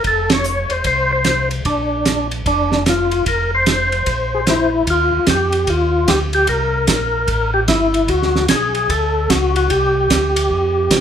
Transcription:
0.04 0.66 F1 medium
0.04 0.32 A4 medium
0.04 kick soft
0.04 ride soft
0.30 0.73 C#5 medium
0.30 snare medium
0.30 ride medium
0.44 hi-hat pedal soft
0.69 0.83 E1 medium
0.69 0.85 C5 medium
0.69 ride soft
0.84 1.61 C2 medium
0.84 1.11 C5 medium
0.84 kick soft
0.84 ride medium
1.12 1.49 C5 medium
1.24 snare soft
1.24 hi-hat pedal soft
1.24 ride medium
1.51 ride soft
1.65 2.42 A#1 medium
1.65 2.28 D4 medium
1.65 kick soft
1.65 ride soft
2.05 snare medium
2.05 hi-hat pedal soft
2.05 ride soft
2.31 ride soft
2.46 3.22 F1 medium
2.46 2.84 D4 medium
2.46 kick soft
2.46 ride soft
2.72 snare soft
2.86 3.25 F4 medium
2.86 snare medium
2.86 hi-hat pedal soft
2.86 ride medium
3.11 ride soft
3.26 4.03 F1 medium
3.26 3.51 A#4 medium
3.26 kick soft
3.26 ride medium
3.55 4.70 C5 medium
3.66 snare medium
3.66 hi-hat pedal soft
3.66 ride medium
3.92 ride soft
4.06 4.83 A#1 medium
4.06 kick soft
4.06 ride soft
4.34 4.41 G#4 medium
4.47 4.86 E4 medium
4.47 snare medium
4.47 hi-hat pedal soft
4.47 ride medium
4.87 5.11 D#2 medium
4.87 5.26 F4 medium
4.87 kick soft
4.87 ride medium
5.12 5.20 D#2 soft
5.27 5.66 F2 medium
5.27 5.70 G4 medium
5.27 kick soft
5.27 snare medium
5.27 hi-hat pedal soft
5.27 ride medium
5.52 ride soft
5.67 6.07 D#2 medium
5.67 6.10 F4 medium
5.67 kick soft
5.67 ride medium
6.08 6.47 D2 medium
6.08 6.20 G4 medium
6.08 kick soft
6.08 snare medium
6.08 hi-hat pedal soft
6.08 ride medium
6.33 6.48 G4 medium
6.33 ride soft
6.47 6.87 C2 medium
6.47 7.51 A#4 medium
6.47 kick soft
6.47 ride medium
6.87 7.27 A#1 medium
6.87 kick soft
6.87 snare medium
6.87 hi-hat pedal medium
6.87 ride medium
7.28 7.67 A1 medium
7.28 kick soft
7.28 ride soft
7.54 7.60 G4 medium
7.68 8.07 G1 medium
7.68 8.10 E4 medium
7.68 kick soft
7.68 snare medium
7.68 hi-hat pedal soft
7.68 ride medium
7.94 ride soft
8.08 8.48 D2 medium
8.08 8.46 F#4 medium
8.08 kick soft
8.08 ride soft
8.23 snare soft
8.36 snare soft
8.48 8.88 B1 medium
8.48 8.91 G#4 medium
8.48 kick soft
8.48 snare medium
8.48 hi-hat pedal medium
8.48 ride medium
8.75 ride soft
8.89 9.28 D2 medium
8.89 9.31 A4 medium
8.89 kick soft
8.89 ride medium
9.29 9.68 C#2 medium
9.29 9.55 F#4 medium
9.29 kick soft
9.29 snare medium
9.29 hi-hat pedal soft
9.29 ride medium
9.56 9.71 F#4 medium
9.56 ride soft
9.70 10.09 C2 medium
9.70 11.01 G4 medium
9.70 kick soft
9.70 ride medium
10.10 10.49 D2 medium
10.10 kick soft
10.10 snare medium
10.10 hi-hat pedal medium
10.10 ride medium
10.36 ride medium
10.50 10.89 F2 medium
10.50 kick soft
10.90 11.01 C3 medium
10.90 kick soft
10.90 snare medium
10.90 hi-hat pedal medium
10.90 ride medium

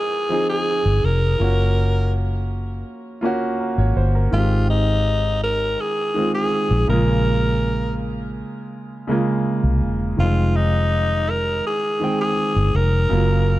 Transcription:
0.00 0.29 F3 medium
0.00 0.30 C4 medium
0.00 0.32 D#4 medium
0.00 0.49 G#4 loud
0.29 1.19 F3 medium
0.29 1.19 C4 medium
0.29 1.20 D#4 medium
0.33 1.21 G#4 medium
0.50 1.06 G#4 loud
0.86 1.01 G1 medium
1.04 1.34 F1 medium
1.04 2.14 A#4 medium
1.39 2.83 F#1 loud
1.39 2.59 A#3 medium
1.39 2.59 C#4 medium
1.39 2.58 F4 medium
1.43 2.60 F#4 medium
3.21 4.12 A#3 medium
3.21 4.12 C#4 medium
3.21 4.11 F4 medium
3.25 4.13 F#4 medium
3.60 3.77 A#4 medium
3.78 3.93 G#1 medium
3.78 3.96 C#5 medium
3.96 4.27 G1 medium
3.96 4.14 C5 medium
4.15 4.50 A#4 medium
4.31 5.75 G#1 loud
4.31 5.51 D#3 medium
4.31 5.51 G#3 medium
4.31 5.52 C4 medium
4.31 4.67 F4 medium
4.35 5.53 G4 medium
4.70 5.39 D#4 loud
5.43 5.82 A#4 loud
5.80 6.34 G#4 medium
6.14 6.88 D#3 medium
6.14 6.87 G#3 medium
6.14 6.90 C4 medium
6.18 6.90 F4 medium
6.35 6.85 G#4 loud
6.71 6.86 A#1 medium
6.88 8.42 A#1 medium
6.88 8.07 C#3 medium
6.88 8.07 G#3 medium
6.88 8.08 A#3 medium
6.88 7.95 A#4 loud
6.92 8.09 F4 medium
9.07 9.97 C#3 medium
9.07 9.98 G#3 medium
9.07 9.98 A#3 medium
9.11 9.99 F4 medium
9.64 9.82 C2 medium
9.82 10.12 E1 medium
10.17 11.61 F1 loud
10.17 11.36 D#3 medium
10.17 10.25 G3 medium
10.17 11.38 C4 medium
10.17 10.58 F4 medium
10.21 11.40 G#3 medium
10.21 11.38 F4 medium
10.56 11.31 D#4 medium
11.30 11.66 A#4 loud
11.66 12.17 G#4 medium
12.00 12.89 D#3 medium
12.00 12.90 G#3 medium
12.00 12.91 C4 medium
12.04 12.91 G5 medium
12.21 12.77 G#4 loud
12.56 12.71 G1 medium
12.75 13.05 F1 medium
12.75 13.59 A#4 loud
13.09 13.59 F#1 loud
13.09 13.59 C#3 medium
13.09 13.59 F#3 medium
13.09 13.59 A#3 medium
13.13 13.59 F4 medium

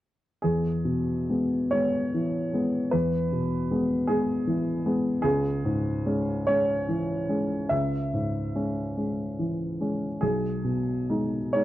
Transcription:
0.42 2.89 E2 soft
0.42 1.72 G#4 medium
0.85 1.56 B2 soft
1.29 1.69 G#3 soft
1.29 1.69 B3 soft
1.71 2.10 G#3 soft
1.71 2.10 B3 soft
1.71 2.92 C#5 medium
2.14 2.78 E3 soft
2.53 2.89 G#3 soft
2.53 2.89 B3 soft
2.91 5.20 E2 soft
2.91 4.07 B4 medium
3.32 3.93 B2 soft
3.71 4.05 G#3 soft
3.71 4.05 B3 soft
4.07 4.43 G#3 soft
4.07 4.43 B3 soft
4.07 5.20 G#4 medium
4.47 5.09 E3 soft
4.86 5.21 G#3 soft
4.86 5.21 B3 soft
5.22 7.67 C#2 soft
5.22 6.48 G#4 medium
5.65 6.32 G#2 soft
6.06 6.45 G#3 soft
6.06 6.45 C#4 soft
6.47 6.85 G#3 soft
6.47 6.85 C#4 soft
6.47 7.70 C#5 medium
6.89 7.54 E3 soft
7.29 7.67 G#3 soft
7.29 7.67 C#4 soft
7.69 10.18 C#2 soft
7.69 9.80 E5 medium
8.13 8.81 G#2 soft
8.55 8.93 G#3 soft
8.55 8.93 C#4 soft
8.97 9.35 G#3 soft
8.97 9.35 C#4 soft
9.39 10.06 E3 soft
9.81 10.18 G#3 soft
9.81 10.18 C#4 soft
10.21 11.64 B1 soft
10.21 11.53 G#4 medium
10.64 11.36 B2 soft
11.10 11.50 G#3 soft
11.10 11.50 D#4 soft
11.53 11.64 G#3 soft
11.53 11.64 D#4 soft
11.53 11.64 C#5 medium

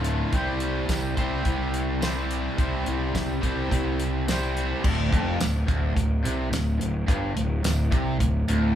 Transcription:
0.00 0.21 D1 medium
0.00 0.32 D2 medium
0.00 0.32 A2 medium
0.00 0.32 D3 medium
0.00 0.33 A3 medium
0.00 0.33 F4 medium
0.04 closed hi-hat medium
0.33 0.83 C2 medium
0.33 1.20 C3 medium
0.33 1.19 G3 medium
0.33 1.18 C4 medium
0.33 1.18 E4 medium
0.33 1.18 G4 medium
0.33 kick medium
0.33 closed hi-hat medium
0.37 1.16 C5 medium
0.60 closed hi-hat medium
0.89 1.15 C2 medium
0.89 kick medium
0.89 snare loud
0.89 closed hi-hat medium
0.89 tambourine loud
1.17 1.43 C2 medium
1.17 2.00 C3 medium
1.17 2.00 G3 medium
1.17 2.01 C4 medium
1.17 2.01 E4 medium
1.17 2.01 G4 medium
1.17 2.00 C5 medium
1.17 kick medium
1.17 closed hi-hat medium
1.45 2.46 C2 medium
1.45 kick medium
1.45 closed hi-hat medium
1.74 closed hi-hat medium
2.01 2.57 C3 medium
2.01 2.57 G3 medium
2.01 2.57 C4 medium
2.01 2.57 E4 medium
2.01 2.57 G4 medium
2.01 2.58 C5 medium
2.01 snare loud
2.01 closed hi-hat medium
2.01 tambourine loud
2.31 closed hi-hat medium
2.58 2.84 C2 medium
2.58 3.41 C3 medium
2.58 3.41 G3 medium
2.58 3.41 C4 medium
2.58 3.41 E4 medium
2.58 3.42 G4 medium
2.58 3.41 C5 medium
2.58 kick medium
2.58 closed hi-hat medium
2.86 3.12 C2 medium
2.86 closed hi-hat soft
3.15 3.40 C2 medium
3.15 kick medium
3.15 snare medium
3.15 closed hi-hat medium
3.15 tambourine medium
3.42 3.68 C2 medium
3.42 4.27 C3 medium
3.42 4.26 G3 medium
3.42 4.26 C4 medium
3.42 4.26 E4 medium
3.42 4.26 G4 medium
3.42 4.25 C5 medium
3.42 kick medium
3.42 closed hi-hat medium
3.71 4.72 C2 medium
3.71 kick medium
3.71 closed hi-hat medium
4.00 closed hi-hat medium
4.28 4.82 C3 medium
4.28 4.83 G3 medium
4.28 4.83 C4 medium
4.28 4.83 E4 medium
4.28 4.83 G4 medium
4.28 4.83 C5 medium
4.28 snare loud
4.28 closed hi-hat medium
4.28 tambourine loud
4.57 closed hi-hat medium
4.84 5.10 D1 medium
4.84 5.11 D2 medium
4.84 kick medium
4.84 crash loud
5.13 5.38 F1 loud
5.13 5.39 F2 medium
5.13 kick loud
5.13 closed hi-hat medium
5.41 5.67 D1 medium
5.41 5.63 D2 medium
5.41 snare loud
5.41 closed hi-hat medium
5.41 tambourine loud
5.67 5.94 D1 medium
5.67 5.94 D2 loud
5.67 kick loud
5.67 closed hi-hat medium
5.96 6.22 D1 medium
5.96 6.18 D2 medium
5.96 kick medium
5.96 closed hi-hat medium
6.24 6.51 C2 medium
6.24 6.51 C3 loud
6.24 closed hi-hat medium
6.51 6.79 D1 medium
6.51 6.74 D2 medium
6.51 snare loud
6.51 closed hi-hat loud
6.51 tambourine loud
6.80 7.07 D1 medium
6.80 7.02 D2 medium
6.80 closed hi-hat medium
7.07 7.34 G1 loud
7.07 7.35 G2 medium
7.07 kick loud
7.07 closed hi-hat medium
7.35 7.63 D1 medium
7.35 7.58 D2 medium
7.35 closed hi-hat medium
7.64 7.90 D1 medium
7.64 7.87 D2 medium
7.64 snare loud
7.64 closed hi-hat medium
7.64 tambourine loud
7.91 8.18 C2 medium
7.91 8.19 C3 loud
7.91 kick loud
7.91 closed hi-hat medium
8.19 8.47 D1 medium
8.19 8.42 D2 medium
8.19 kick medium
8.19 closed hi-hat medium
8.47 8.74 D1 medium
8.47 8.74 D2 loud
8.47 closed hi-hat medium

